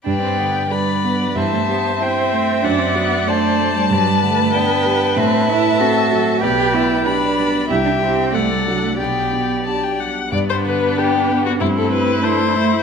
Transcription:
<<
  \new Staff \with { instrumentName = "Violin" } { \time 2/4 \key g \major \tempo 4 = 94 g''4 b''4 | a''4 g''4 | fis''4 a''4~ | a''2 |
a''2 | g''4 b''4 | g''4 fis''4 | g''4 a''16 g''16 fis''8 |
d''16 c''16 b'8 g'8. fis'16 | e'16 a'16 b'8 c''4 | }
  \new Staff \with { instrumentName = "Violin" } { \time 2/4 \key g \major d''4 d''4 | e''4 e''4~ | e''4 d''4 | d''4 g''4 |
e''2 | d''4 d''4 | e''4 d''4 | d''4. r8 |
b2 | c'4 d'8 e'8 | }
  \new Staff \with { instrumentName = "Viola" } { \time 2/4 \key g \major b'4 b'4 | c''2 | d''4 c''4 | b'2~ |
b'4 a'8 a'8 | b'4 b'4 | g'4 a'4 | g'4. r8 |
d'2 | e'2 | }
  \new Staff \with { instrumentName = "Cello" } { \time 2/4 \key g \major d'16 c'16 b8 g8. fis16 | e16 a16 b8 c'4 | d'16 c'16 b8 a8. g16 | fis16 g16 a8 b4 |
c'8 e'8 fis'4 | g'8 e'8 d'4 | e'16 d'16 c'8 a16 g16 fis16 a16 | b4 r4 |
b2 | a2 | }
  \new Staff \with { instrumentName = "Grand piano" } { \time 2/4 \key g \major g,8 d8 <d' b'>8 b8 | g,8 g8 <e' c''>8 a8 | fis,8 fis8 <d' d''>8 a8 | g,8 d8 <d' d''>8 g8 |
a,8 a8 <c' a'>8 fis8 | b,,8 b,8 <d' g'>8 g8 | c,8 <e' g'>8 c,8 <d' fis'>8 | b,,8 b,8 <d' g'>8 g8 |
g,8 d8 <d' g'>8 b8 | g,8 g8 <e' a'>8 a8 | }
>>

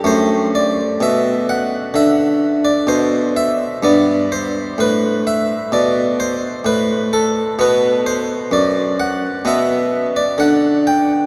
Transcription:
<<
  \new Staff \with { instrumentName = "Harpsichord" } { \time 4/4 \key g \major \tempo 4 = 64 c''8 d''8 e''8 fis''8 e''8. d''16 c''8 e''8 | d''8 c''8 b'8 e''8 d''8 c''8 b'8 a'8 | b'8 c''8 d''8 fis''8 e''8. d''16 fis''8 g''8 | }
  \new Staff \with { instrumentName = "Harpsichord" } { \clef bass \time 4/4 \key g \major << { a1 | b1 | b2 b2 | } \\ { fis,4 b,4 d4 b,4 | g,4 a,4 b,4 a,4 | b,4 fis,4 b,4 d4 | } >> }
>>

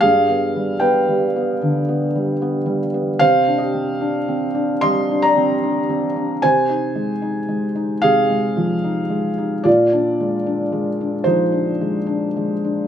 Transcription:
<<
  \new Staff \with { instrumentName = "Felt piano" } { \time 4/4 \key c \minor \tempo 4 = 75 <aes' f''>4 <b' g''>2~ <b' g''>8 r8 | <c'' f''>8 <g' ees''>4. <ees'' c'''>8 <d'' bes''>4. | <c'' aes''>2 <aes' f''>2 | <f' d''>2 <ees' c''>2 | }
  \new Staff \with { instrumentName = "Felt piano" } { \time 4/4 \key c \minor \tuplet 3/2 { g,8 b8 g8 b8 g8 b8 d8 b8 g8 b8 g8 b8 } | \tuplet 3/2 { c8 d'8 c'8 d'8 c'8 d'8 g8 d'8 c'8 d'8 c'8 d'8 } | \tuplet 3/2 { c8 ees'8 aes8 ees'8 aes8 ees'8 c8 aes8 f8 ees'8 aes8 ees'8 } | \tuplet 3/2 { bes,8 d'8 aes8 d'8 aes8 d'8 f8 d'8 aes8 d'8 aes8 d'8 } | }
>>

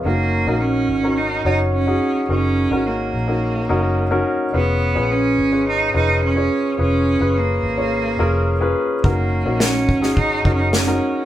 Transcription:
<<
  \new Staff \with { instrumentName = "Grand piano" } { \time 4/4 \key fis \major \tempo 4 = 107 << { <cis'' eis''>16 r2. r8. | r1 | r1 | r1 |
r1 | } \\ { <cis' dis' fis' ais'>8 r16 <cis' dis' fis' ais'>8. r16 <cis' dis' fis' ais'>8 r16 <cis' dis' fis' cis''>8 r16 <cis' dis' fis' gis'>8 r16 | <cis' dis' fis' ais'>8 r16 <cis' dis' fis' ais'>8. r16 <cis' dis' fis' ais'>8 r16 <cis' dis' fis' ais'>8 r16 <cis' dis' fis' ais'>8 r16 | <cis' eis' gis' b'>8 r16 <cis' eis' gis' b'>8. r16 <cis' eis' gis' b'>8 r16 <cis' eis' gis' b'>8 r16 <cis' eis' gis' cis''>8 r16 | <cis' eis' gis' b'>8 r16 <cis' eis' gis' b'>8. r16 <cis' eis' gis' cis''>8 r16 <cis' eis' gis' ais'>8 r16 <cis' eis' gis' b'>8 r16 |
<cis' dis' fis' ais'>8 r16 <cis' dis' fis' ais'>8. r16 <cis' dis' fis' gis'>8 r16 <cis' dis' fis' ais'>8 r16 <cis' dis' fis' ais'>8 r16 | } >> }
  \new Staff \with { instrumentName = "Cello" } { \time 4/4 \key fis \major ais4 cis'4 dis'8 dis'8 cis'4 | cis'4 ais2~ ais8 r8 | b4 cis'4 dis'8 dis'8 cis'4 | cis'4 ais2~ ais8 r8 |
ais4 cis'4 dis'8 dis'32 cis'32 dis'16 cis'4 | }
  \new Staff \with { instrumentName = "Fingered electric bass" } { \clef bass \time 4/4 \key fis \major fis,,8. ais,,8. gis,,4 fis,,4 r8 | fis,,8. gis,,8. ais,,4 fis,,4 r8 | eis,,8. ais,,8. gis,,4 eis,,4 r8 | eis,,8. fis,,8. gis,,4 eis,,4 r8 |
fis,,8. ais,,8. gis,,4 fis,,4 r8 | }
  \new DrumStaff \with { instrumentName = "Drums" } \drummode { \time 4/4 r4 r4 r4 r4 | r4 r4 r4 r4 | r4 r4 r4 r4 | r4 r4 r4 r4 |
bd4 sn8 bd16 sn16 bd8 bd8 sn4 | }
>>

